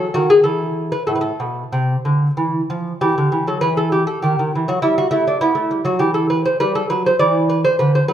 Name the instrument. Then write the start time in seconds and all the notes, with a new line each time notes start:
lute
Already playing: A4
0.14 D#3 F#4
0.30 G#4
0.44 E3 A4
0.92 B4
1.07 A2 A4
1.15 B4
1.21 A4
1.40 B2
1.72 C3
2.05 D3
2.37 E3
2.70 F3
3.01 E3 G4
3.18 D3
3.32 E3
3.47 F#3 A4
3.61 E3 B4
3.77 A4
3.92 G4
4.07 A4
4.22 D#3 G4
4.39 D#3
4.55 E3
4.68 F#3 F#4
4.82 G3 E4
4.98 F#4
5.11 A3 E4
5.27 D4
5.41 B3 E4
5.55 A3
5.71 G3
5.85 F#3 F#4
5.99 E3 G4
6.14 A4
6.30 B4
6.46 C5
6.60 G3 B4
6.75 A4
6.90 F#3 B4
7.06 C5
7.19 E3 D5
7.49 B4
7.65 C5
7.79 D3 B4
7.95 C5
8.08 F#3 B4